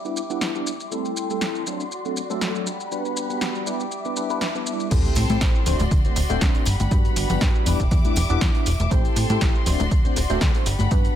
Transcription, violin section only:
0.00 0.89 G3 medium
0.00 0.90 E5 medium
0.00 0.90 D6 medium
0.91 1.66 A4 medium
0.91 1.66 G5 medium
0.91 2.65 C6 medium
1.66 2.65 F#4 medium
1.66 2.65 D5 medium
2.66 4.89 G3 medium
2.66 3.65 F#5 medium
2.66 3.65 B5 medium
3.66 4.90 E5 medium
3.66 4.90 D6 medium
4.91 5.66 A4 medium
4.91 5.66 G5 medium
4.91 5.65 C6 medium
5.66 6.65 F#4 medium
5.66 6.65 D5 medium
5.66 6.65 C6 medium
6.66 8.89 G3 medium
6.66 7.65 F#5 medium
6.66 7.65 B5 medium
7.66 8.90 E5 medium
7.66 8.90 D6 medium
8.91 9.65 A4 medium
8.91 9.65 G5 medium
8.91 10.64 C6 loud
9.66 10.65 F#4 medium
9.66 10.65 D5 medium
10.66 11.16 G3 medium
10.66 11.16 F#5 medium
10.66 11.16 B5 medium

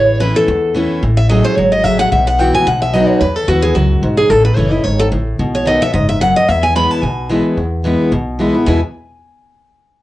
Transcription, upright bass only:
0.00 0.31 A1 medium
0.48 0.86 E2 medium
1.03 1.40 A1 medium
1.57 1.80 G#1 medium
1.84 2.08 A1 medium
2.12 2.50 B1 loud
2.67 3.04 B1 medium
3.21 3.40 E2 medium
3.48 3.71 D#2 medium
3.76 3.99 C#2 medium
4.02 4.26 B1 medium
4.30 4.49 A1 medium
4.57 4.81 F#1 medium
4.85 5.08 G#1 medium
5.12 5.35 A1 medium
5.39 5.77 B1 medium
5.94 6.31 F#1 medium
6.49 6.86 E2 medium
7.03 7.40 B1 medium
7.57 7.95 E2 medium
8.12 8.49 B1 medium
8.67 8.81 E2 medium

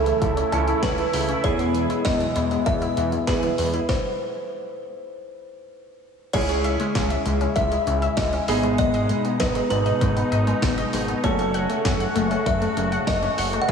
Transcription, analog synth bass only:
0.00 0.12 C#2 loud
0.22 0.43 C#2 loud
0.52 0.74 C#2 loud
0.83 1.04 C#2 loud
1.13 1.35 C#2 loud
1.44 1.87 E2 loud
2.05 2.27 E2 loud
2.36 2.57 E2 medium
2.66 2.88 E2 loud
2.97 3.19 E2 loud
3.27 3.49 E2 loud
3.58 3.80 E2 loud
6.34 6.77 C#2 loud
6.95 7.17 C#2 loud
7.26 7.47 C#2 loud
7.56 7.78 C#2 loud
7.87 8.08 C#2 loud
8.17 8.39 C#2 loud
8.48 9.12 G#1 loud
9.40 9.62 G#1 loud
9.71 9.92 G#1 loud
10.01 10.23 G#1 loud
10.32 10.53 G#1 loud
10.62 10.84 G#1 loud
10.93 11.15 G#1 loud
11.24 11.67 F#1 loud
11.85 12.06 F#1 medium
12.15 12.37 F#1 loud
12.46 12.68 F#1 loud
12.77 12.98 F#1 loud
13.07 13.29 F#1 loud
13.38 13.59 F#1 loud
13.69 13.72 E2 loud

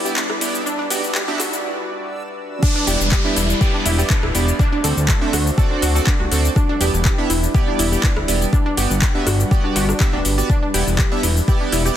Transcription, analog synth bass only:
2.87 2.96 E1 loud
3.00 3.17 E1 medium
3.36 3.54 E1 medium
3.85 4.03 E1 loud
4.23 4.31 D1 loud
4.35 4.52 E1 medium
4.84 4.93 D2 loud
4.97 5.14 D2 medium
5.33 5.51 D2 loud
5.82 6.00 D2 loud
6.20 6.28 C2 loud
6.31 6.49 D2 medium
6.81 6.90 E1 loud
6.94 7.10 E1 medium
7.30 7.47 E1 medium
7.79 7.97 E1 loud
8.17 8.25 D1 loud
8.28 8.46 E1 medium
8.77 8.86 G1 loud
8.90 9.07 G1 medium
9.27 9.44 G1 medium
9.76 9.93 G1 loud
10.13 10.21 D1 loud
10.25 10.42 G1 medium
10.74 10.83 E1 loud
10.87 11.04 E1 medium
11.23 11.41 E1 medium
11.73 11.90 E1 loud

